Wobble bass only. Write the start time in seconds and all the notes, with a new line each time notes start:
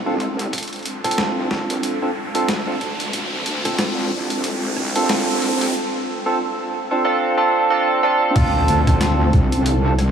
Already playing: C2
1.18 C2
2.48 D2
3.14 D2
3.46 D2
4.12 C2
5.09 C2
8.36 D2
8.68 D2
9.33 C2